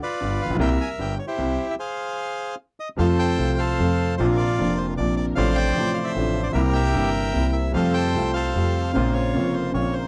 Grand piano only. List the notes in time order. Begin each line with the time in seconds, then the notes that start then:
0.21 G1 G2
0.46 A1
0.51 A#1
0.55 B1
0.60 C2 C3 G3 A#3 E4
0.99 G1 G2
1.38 C2 C3
2.97 F2 C3 F3 A3 F4
3.37 C2 C3 F3 A3
3.41 F4
3.78 F2 C3 F3 A3
3.82 F4
4.18 A#1 A#2 C3 F3 A#3 D4
4.57 F1 F2 C3 F3 A#3
4.61 D4
4.96 A#1 A#2 C3 F3 A#3 D4
5.35 A1 A2 C3 F3 A3
5.39 D4
5.75 A1 A2 C3 F3 A3 D4
6.14 A1 A2 C3 F3 A3
6.18 D4
6.52 C2 C3 G3 A#3
6.57 E4
6.92 G1 G2 C3 G3 A#3
6.96 E4
7.32 C2 C3 G3 A#3 E4
7.72 F2 C3 F3 G3 A3
7.76 F4
8.12 C2 C3 G3 A3 F4
8.54 F2 C3 F3 G3 A3 F4
8.93 A#1 A#2 C#3 A#3 C4
8.97 F4
9.33 F1 F2 C#3 A#3 C4
9.37 F4
9.72 A#1 A#2 C#3 A#3 C4
9.76 F4